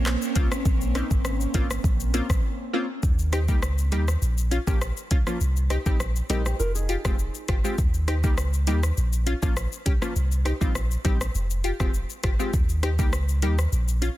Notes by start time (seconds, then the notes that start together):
Already playing: A#1 A#3 C4 C#4
0.06 cross-stick, clap, shaker
0.22 shaker
0.36 C2 A#3 C4 C#4 F4, kick, closed hi-hat, shaker
0.52 cross-stick, shaker
0.65 A#1, kick, shaker
0.81 shaker
0.95 A#3 C4 C#4 D#4, cross-stick, closed hi-hat, shaker
1.11 G#1, kick, shaker
1.25 cross-stick, shaker
1.41 shaker
1.54 G#1 A#3 C4 C#4 F4, kick, closed hi-hat, shaker
1.71 cross-stick, shaker
1.84 A#1, kick, shaker
2.00 shaker
2.14 A#3 C4 C#4 F4, closed hi-hat, shaker
2.30 A#1, kick, cross-stick, shaker
2.73 A#3 C4 C#4 F4
3.03 D#2, kick, shaker
3.19 shaker
3.32 D#4 G4, cross-stick, closed hi-hat, shaker
3.48 C#2 G3 A#3 D#4 G4, kick, shaker
3.62 cross-stick, shaker
3.78 shaker
3.92 D#2 G3 A#3 D#4 G4, closed hi-hat, shaker
4.08 cross-stick, shaker
4.22 A#1, shaker
4.38 shaker
4.51 C#4 F4, closed hi-hat, shaker
4.67 A#1 F3 A#3 C#4 G4, kick, shaker
4.81 cross-stick, shaker
4.97 shaker
5.11 C2 C#4 F4, kick, closed hi-hat, shaker
5.27 F3 A#3 C#4 F4, cross-stick, shaker
5.41 C2, shaker
5.56 shaker
5.70 D#4 G4, cross-stick, closed hi-hat, shaker
5.86 A#1 G3 C4 D#4 G4, kick, shaker
6.00 cross-stick, shaker
6.16 shaker
6.30 A#1 G3 C4 D#4 G4 A#4 D#5, closed hi-hat, shaker
6.46 G4 C5, cross-stick, shaker
6.59 F1 F4 A#4, shaker
6.75 D#4 G#4, shaker
6.89 F4 G4, closed hi-hat, shaker
7.05 F1 G#3 C4 F4 G4, kick, cross-stick, shaker
7.19 shaker
7.35 shaker
7.48 G1 F4 G4, kick, cross-stick, closed hi-hat, shaker
7.64 G#3 C4 F4 G4, shaker
7.78 D#2, kick, shaker
7.94 shaker
8.08 D#4 G4, cross-stick, closed hi-hat, shaker
8.24 C#2 G3 A#3 D#4 G4, kick, shaker
8.38 cross-stick, shaker
8.53 shaker
8.67 D#2 G3 A#3 D#4 G4, closed hi-hat, shaker
8.83 cross-stick, shaker
8.97 A#1, shaker
9.13 shaker
9.26 C#4 F4, closed hi-hat, shaker
9.42 A#1 F3 A#3 C#4 F4, kick, shaker
9.57 cross-stick, shaker
9.72 shaker
9.86 C2 C#4 G4, kick, closed hi-hat, shaker
10.02 F3 A#3 C#4 F4, cross-stick, shaker
10.16 C2, shaker
10.32 shaker
10.45 D#4 G4, cross-stick, closed hi-hat, shaker
10.61 A#1 G3 C4 D#4 F4, kick, shaker
10.75 cross-stick, shaker
10.91 shaker
11.04 A#1 G3 C4 D#4 G4, kick, closed hi-hat, shaker
11.21 cross-stick, shaker
11.35 F1, shaker
11.50 shaker
11.64 F4 G4, closed hi-hat, shaker
11.80 F1 G#3 C4 F4 G4, kick, cross-stick, shaker
11.94 shaker
12.10 shaker
12.23 G1 F4 G4, kick, cross-stick, closed hi-hat, shaker
12.39 G#3 C4 F4 G4, shaker
12.53 D#2, kick, shaker
12.69 shaker
12.83 D#4 G4, cross-stick, closed hi-hat, shaker
12.99 C#2 G3 A#3 D#4 G4, kick, shaker
13.13 cross-stick, shaker
13.29 shaker
13.42 D#2 G3 A#3 D#4 G4, closed hi-hat, shaker
13.59 cross-stick, shaker
13.72 A#1, shaker
13.88 shaker
14.02 C#4 F4, closed hi-hat, shaker